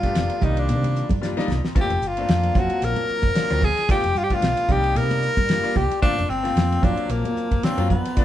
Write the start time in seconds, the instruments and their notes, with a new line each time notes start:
Already playing: fingered electric bass G2, tenor saxophone F4, ambient pad D5
0.03 grand piano A3 B3 D4 G4, kick, snare, ride
0.15 fingered electric bass F1, snare, hi-hat pedal, ride
0.30 ride
0.41 fingered electric bass C2, grand piano D#3 G3 A#3 D4, tenor saxophone D#4, ambient pad A#5 C6, kick, hi-hat pedal, low conga
0.57 tenor saxophone D4, ride
0.69 fingered electric bass C3, hi-hat pedal, ride, high conga
0.83 ride, high conga
0.96 hi-hat pedal
1.09 fingered electric bass G2, grand piano D4 D#4, kick, ride, high conga, low conga
1.22 grand piano G3 A#3 D4 F4, snare, hi-hat pedal
1.37 grand piano G3 A#3 D4 D#4, muted fingered electric bass stroke, snare
1.48 fingered electric bass C2, grand piano D4 D#4, snare, hi-hat pedal, high conga, low conga
1.65 snare
1.75 fingered electric bass G1, grand piano A3 A#3 C4 F4, kick, hi-hat pedal, ride
1.81 tenor saxophone G4
1.90 fingered electric bass F1, grand piano C4 F4, ride
2.02 fingered electric bass G1, hi-hat pedal
2.07 tenor saxophone F4
2.17 grand piano A3 A#3 C4 D4, ride
2.28 fingered electric bass F2, snare, hi-hat pedal, ride
2.43 ride
2.55 fingered electric bass F#1, grand piano F#3 A#3 C4 F4, ambient pad D5 C6, kick, snare, hi-hat pedal, low conga
2.59 tenor saxophone F#4
2.70 ride
2.82 fingered electric bass A#1, tenor saxophone A#4, hi-hat pedal, ride
2.96 ride, high conga
3.07 muted fingered electric bass stroke, hi-hat pedal
3.22 fingered electric bass F#1, grand piano C4 F#4, kick, ride, high conga
3.35 grand piano F#3 A#3 C4 D4, muted fingered electric bass stroke, snare, hi-hat pedal, ride
3.50 fingered electric bass D2, grand piano F#3 A#3 C4 F4, snare, ride
3.61 grand piano C4 D4, tenor saxophone G#4, kick, hi-hat pedal, high conga, low conga
3.77 snare, ride
3.89 fingered electric bass G1, grand piano A3 B3 D4 F4, tenor saxophone G4, kick, hi-hat pedal, ride
4.04 fingered electric bass F1, grand piano D4 F4, ride
4.15 fingered electric bass G2, tenor saxophone F4, hi-hat pedal
4.24 tenor saxophone G4
4.30 grand piano A3 B3 D4 F4, tenor saxophone F4, kick, snare, ride
4.41 fingered electric bass B1, snare, hi-hat pedal, ride
4.57 ride
4.68 fingered electric bass C2, grand piano G3 A#3 D4 D#4, tenor saxophone G4, ambient pad A#5 C6, kick, hi-hat pedal, low conga
4.84 ride
4.96 fingered electric bass C3, tenor saxophone A#4, hi-hat pedal, ride
5.10 ride, high conga
5.22 hi-hat pedal
5.37 fingered electric bass G2, grand piano D4 F4, kick, ride, high conga
5.49 grand piano G3 A#3 D4 F4, snare, hi-hat pedal, ride
5.63 grand piano G3 A#3 D4 F4, muted fingered electric bass stroke, ride
5.76 fingered electric bass C2, grand piano D4 D#4, tenor saxophone G4, kick, hi-hat pedal, high conga, low conga
5.91 ride
6.02 fingered electric bass G1, grand piano A3 A#3 C4 F4, tenor saxophone D4, kick, hi-hat pedal, ride
6.17 fingered electric bass F1, grand piano C4 F4, ride
6.29 fingered electric bass G1, tenor saxophone C4, hi-hat pedal
6.43 grand piano A3 A#3 C4 F4, snare, ride
6.56 fingered electric bass F2, snare, hi-hat pedal, ride
6.72 ride
6.82 fingered electric bass F#1, grand piano F#3 A#3 C4 F4, tenor saxophone D4, ambient pad D5 A#5 C6, kick, snare, hi-hat pedal, low conga
6.97 ride
7.09 fingered electric bass A#1, tenor saxophone A#3, hi-hat pedal, ride
7.25 ride, high conga
7.36 muted fingered electric bass stroke, hi-hat pedal
7.51 fingered electric bass F#1, grand piano C4 F4, kick, ride, high conga
7.63 grand piano F#3 A#3 C4 D4, tenor saxophone C4, muted fingered electric bass stroke, snare, hi-hat pedal, ride
7.77 fingered electric bass F#2, grand piano F#3 A#3 C4 F4, ride
7.89 tenor saxophone B3, grand piano C4 G#4, kick, hi-hat pedal, low conga
8.05 snare, ride
8.16 fingered electric bass G1, grand piano F3 A3 B3 D4, ambient pad F4 G5 B5, kick, hi-hat pedal, ride